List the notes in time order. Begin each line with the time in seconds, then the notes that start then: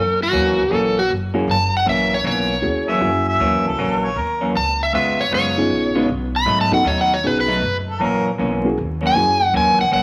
Already playing: F#2 A4
0.23 F#4
0.31 D#2 F#2 E3 A#3 C#4
0.59 C#2
0.70 A#1 F#2 E3 A#3 C#4 A4
0.99 F#4
1.10 F#1
1.34 F#2 E3 A#3 C#4 E4 F#4 G#4
1.48 F#1 A5
1.77 F#5
1.85 A#1 F#2 E3 A#3 C#4 E5
2.14 C#5
2.23 B1 F#2 E3 A#3 C#4 C#5
2.62 D#2 A#3 C#4 E4 F#4 G#4
2.88 F#2 E3 A#3 C#4 E5
3.01 F#2 A#3 C#4 E4 F#4 G#5
3.28 E5
3.40 D#2 F#2 E3 A#3 C#4
3.65 C#2 A4
3.78 A#1 F#2 E3 A#3 C#4
4.05 C#5
4.16 D#2 A#4
4.41 F#2 E3 A#3 C#4
4.55 C#2 A5
4.83 E5
4.93 F2 C#3 G#3 B3 F4 E5
5.21 C#5
5.31 F#2 C#3 G#3 B3 F4 C#5
5.57 B3 C#4 D#4 F4 G#4
5.70 A#1
5.95 C#3 G#3 B3 C#4 D#4 F4 F#4 B4
6.09 B1
6.36 B5
6.46 G#2 B2 F#3 A3 D#4
6.61 A5
6.71 F#2 B3 C#4 D#4 F#4 A4 F#5
6.84 D#2 B2 F#3 A3 D#4 C#5
7.01 F#5
7.14 C#5
7.24 B1 B3 C#4 D#4 F#4 G#4 B4
7.40 B4
7.48 B2 F#3 A3 D#4
7.63 F#1
7.90 A4
8.00 A#1 F#2 E3 A#3 C#4 A#4
8.38 B1 F#2 E3 A#3 C#4
8.64 A#3 C#4 E4 F#4 G#4
8.78 D#2
9.01 F#2 E3 A#3 C#4
9.07 G#5
9.16 F#2 A#3 C#4 E4 F#4 G#4
9.53 D#2 F#2 E3 A#3 C#4 G#5
9.80 C#2 F#5
9.91 A#1 F#2 E3 A#3 C#4 F#5